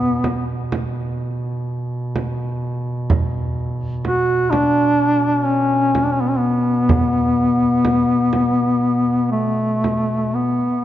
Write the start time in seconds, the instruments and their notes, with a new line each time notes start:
Already playing: duduk B2 B3
0.24 frame drum
0.72 frame drum
2.16 frame drum
3.10 frame drum
4.04 duduk F#4, frame drum
4.51 duduk D4, frame drum
5.44 duduk C#4
5.95 frame drum
6.04 duduk D4
6.12 duduk C#4
6.21 duduk B3
6.30 duduk C#4
6.38 duduk B3
6.89 frame drum
7.85 frame drum
8.33 frame drum
9.31 duduk A3
9.84 frame drum
10.35 duduk B3